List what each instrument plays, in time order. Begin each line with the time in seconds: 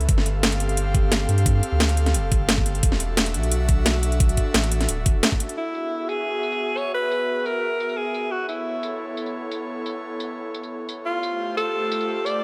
Already playing: analog synth pad A4
0.01 closed hi-hat
0.09 sub bass G1, analog synth pad C4 G4 F5, kick, closed hi-hat
0.18 snare
0.26 closed hi-hat
0.43 snare, closed hi-hat
0.52 closed hi-hat
0.60 closed hi-hat
0.69 closed hi-hat
0.77 closed hi-hat
0.94 kick, closed hi-hat
1.12 snare, closed hi-hat
1.29 sub bass G2, closed hi-hat
1.38 closed hi-hat
1.46 kick, closed hi-hat
1.63 closed hi-hat
1.72 sub bass D2
1.80 snare, closed hi-hat
1.89 closed hi-hat
1.97 closed hi-hat
2.06 snare, closed hi-hat
2.14 sub bass F1, closed hi-hat
2.32 sub bass G1, kick, closed hi-hat
2.49 snare, closed hi-hat
2.58 kick
2.66 closed hi-hat
2.75 closed hi-hat
2.83 sub bass E1, analog synth pad D4 F#4 E5, kick, closed hi-hat
2.92 snare
3.00 closed hi-hat
3.17 snare, closed hi-hat
3.26 closed hi-hat
3.34 sub bass B1, closed hi-hat
3.43 closed hi-hat
3.51 closed hi-hat
3.69 kick, closed hi-hat
3.86 snare, closed hi-hat
4.03 closed hi-hat
4.12 closed hi-hat
4.20 kick, closed hi-hat
4.29 closed hi-hat
4.37 kick, closed hi-hat
4.54 sub bass A1, snare, closed hi-hat
4.64 closed hi-hat
4.72 closed hi-hat
4.81 snare, closed hi-hat
4.89 sub bass D1, closed hi-hat
5.06 sub bass E1, kick, closed hi-hat
5.23 snare, closed hi-hat
5.32 kick
5.40 closed hi-hat
5.49 closed hi-hat
5.57 analog synth pad B3 F#4 G#4 E5, alto saxophone E4
5.75 tambourine
6.09 alto saxophone G#4, open hi-hat, tambourine
6.43 tambourine
6.52 tambourine
6.77 alto saxophone C#5, open hi-hat, tambourine
6.95 alto saxophone B4
7.11 tambourine
7.46 alto saxophone A#4, open hi-hat, tambourine
7.80 tambourine
7.89 tambourine
7.97 alto saxophone G#4
8.14 open hi-hat, tambourine
8.32 analog synth pad E4 A4 C#5, alto saxophone F#4
8.49 alto saxophone E4, tambourine
8.83 open hi-hat, tambourine
9.17 tambourine
9.26 tambourine
9.51 open hi-hat, tambourine
9.86 tambourine
10.20 open hi-hat, tambourine
10.54 tambourine
10.63 tambourine
10.89 open hi-hat, tambourine
11.06 analog synth pad A3 F4 G4 C5, alto saxophone F4
11.23 tambourine
11.57 alto saxophone A4, open hi-hat, tambourine
11.91 tambourine
12.01 tambourine
12.26 alto saxophone D5, open hi-hat, tambourine